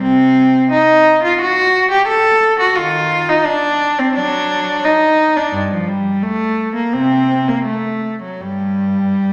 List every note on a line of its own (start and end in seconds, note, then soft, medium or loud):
0.02 0.67 C3 medium
0.02 0.69 C4 loud
0.71 1.21 D#4 loud
1.24 1.39 F4 medium
1.41 1.89 F#4 loud
1.91 2.07 G4 loud
2.08 2.58 A4 loud
2.60 2.76 F#4 medium
2.75 3.24 D#3 medium
2.75 3.27 F4 loud
3.29 3.46 D#4 medium
3.45 3.98 D4 loud
3.99 4.16 C4 medium
4.15 4.80 F#3 medium
4.15 4.83 D4 loud
4.85 5.36 D#4 medium
5.36 5.53 D4 medium
5.52 5.70 G2 medium
5.71 5.88 F3 medium
5.88 6.22 G3 medium
6.22 6.75 A3 loud
6.75 6.93 A#3 medium
6.93 7.43 C3 medium
6.93 7.47 C4 medium
7.48 7.66 A#3 medium
7.64 8.20 A3 medium
8.22 8.41 F#3 medium
8.40 9.33 G2 medium
8.40 9.33 G3 medium